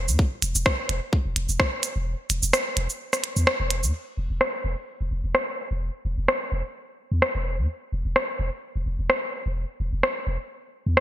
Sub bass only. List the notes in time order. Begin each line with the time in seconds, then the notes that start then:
0.08 E2
0.42 E1
0.55 E1
0.89 E1
1.25 E1
1.36 E1
1.49 E1
1.96 E1
2.30 E1
2.43 E1
2.77 E1
3.36 E2
3.60 E1
3.83 E2
4.17 E1
4.30 E1
4.64 E1
5.01 E1
5.11 E1
5.24 E1
5.71 E1
6.05 E1
6.18 E1
6.52 E1
7.12 E2
7.35 E1
7.58 E2
7.92 E1
8.05 E1
8.39 E1
8.76 E1
8.86 E1
8.99 E1
9.46 E1
9.80 E1
9.93 E1
10.27 E1
10.86 E2